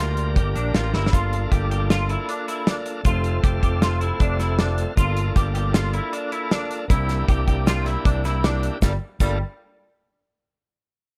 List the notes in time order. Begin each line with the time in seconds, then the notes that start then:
Already playing: D2 A#3 D4 F4 G4 A#4
0.17 closed hi-hat
0.36 G1 G4, kick, closed hi-hat, shaker
0.56 A#1 D4, closed hi-hat, shaker
0.75 A1 F4, snare, closed hi-hat
0.94 G1 E4, snare
1.06 snare
1.11 G1 A#3 D4 F4 A4, kick, closed hi-hat, shaker
1.33 closed hi-hat
1.52 G1 G4, kick, closed hi-hat
1.71 G4, closed hi-hat, shaker
1.90 F4, snare, closed hi-hat, shaker
2.09 E4, closed hi-hat
2.29 D4, closed hi-hat, shaker
2.48 E4, closed hi-hat, shaker
2.67 D4, snare, closed hi-hat, shaker
2.86 closed hi-hat, shaker
3.03 F1 A3 C4 F4 A4, kick, closed hi-hat, shaker
3.24 closed hi-hat
3.44 F1 G4, kick, closed hi-hat
3.63 F1 G4, kick, closed hi-hat, shaker
3.82 F4, snare, closed hi-hat, shaker
4.01 E4, closed hi-hat
4.20 F1 D4, kick, closed hi-hat, shaker
4.40 E4, snare, closed hi-hat, shaker
4.59 D4, snare, closed hi-hat, shaker
4.78 closed hi-hat, shaker
4.96 G1 A#3 D4 F4, kick, closed hi-hat, shaker
5.00 A4
5.17 closed hi-hat
5.36 G1 G4, kick, closed hi-hat
5.55 G4, closed hi-hat, shaker
5.74 F4, snare, closed hi-hat, shaker
5.93 E4, closed hi-hat
6.13 D4, closed hi-hat, shaker
6.32 E4, closed hi-hat
6.51 D4, snare, closed hi-hat, shaker
6.71 closed hi-hat, shaker
6.88 C2 A#3 D4 E4, kick, closed hi-hat, shaker
6.92 G4
7.09 snare, closed hi-hat, shaker
7.28 C2 G4, kick, closed hi-hat, shaker
7.48 C2 G4, kick, closed hi-hat
7.67 F4, snare, closed hi-hat, shaker
7.86 E4, snare, closed hi-hat
8.05 C2 D4, kick, closed hi-hat
8.25 E4, snare, closed hi-hat, shaker
8.44 D4, snare, closed hi-hat, shaker
8.63 closed hi-hat
8.82 G1 G3 A#3 D4 F4 A4, kick, snare, shaker
9.20 G1 G3 A#3 D4 F4 A4, kick, crash, shaker